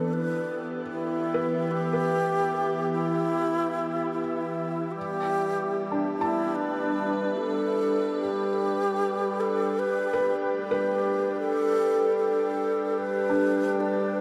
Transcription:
0.00 4.96 E3 medium
0.00 7.05 B3 medium
0.00 0.80 D4 soft
0.00 6.59 G4 medium
0.00 0.15 A4 loud
0.00 0.84 D5 medium
0.00 7.79 E5 medium
0.13 0.67 B4 loud
0.91 1.73 E4 medium
1.34 1.92 B4 medium
1.71 2.91 G4 loud
1.93 4.20 B4 medium
2.92 4.10 E4 loud
4.12 4.93 E4 medium
4.91 5.89 G4 loud
4.96 14.21 G3 medium
4.96 14.21 G4 medium
5.25 14.21 D4 medium
5.48 12.24 B4 medium
5.92 8.21 D4 soft
6.17 6.57 E4 medium
6.21 8.50 A5 medium
6.55 7.39 D4 medium
7.38 8.20 A4 medium
8.02 14.21 G5 medium
8.21 9.42 G4 loud
9.40 9.81 A4 medium
9.79 10.34 B4 loud
10.13 10.70 B4 medium
10.62 11.37 G4 medium
10.71 12.96 B4 medium
11.40 12.16 A4 loud
11.99 14.21 A4 medium
12.17 13.00 A4 medium
12.98 13.82 B4 loud
13.29 14.21 D4 soft
13.80 14.21 D4 medium

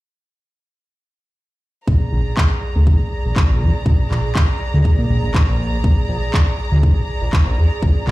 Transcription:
1.87 1.97 A#1 medium
1.87 8.11 G#4 medium
1.87 8.11 D5 medium
1.87 8.11 A#5 medium
1.87 kick loud
2.13 2.22 A#1 medium
2.37 kick loud
2.37 clap loud
2.76 2.88 D2 medium
2.87 2.96 G#1 medium
2.87 kick loud
3.26 3.33 A#1 medium
3.36 kick loud
3.36 clap loud
3.50 3.63 A#1 medium
3.61 3.70 F2 medium
3.86 3.95 A#1 medium
3.86 kick loud
4.11 4.20 A#1 medium
4.11 clap medium
4.35 kick loud
4.35 clap loud
4.74 4.81 D2 medium
4.85 kick loud
4.99 5.06 A#2 medium
5.10 5.19 A#1 medium
5.24 5.31 A#1 medium
5.34 kick loud
5.34 clap loud
5.48 5.78 A#1 loud
5.84 5.93 A#1 medium
5.84 kick loud
6.09 6.18 A#1 medium
6.34 kick loud
6.34 clap loud
6.72 6.85 D2 loud
6.83 6.93 G#1 medium
6.83 kick loud
7.21 7.29 A#1 medium
7.33 kick loud
7.33 clap loud
7.46 7.59 A#1 medium
7.57 7.67 F2 medium
7.82 7.92 A#1 medium
7.82 kick loud
8.07 8.11 A#1 medium
8.07 kick medium
8.07 clap medium

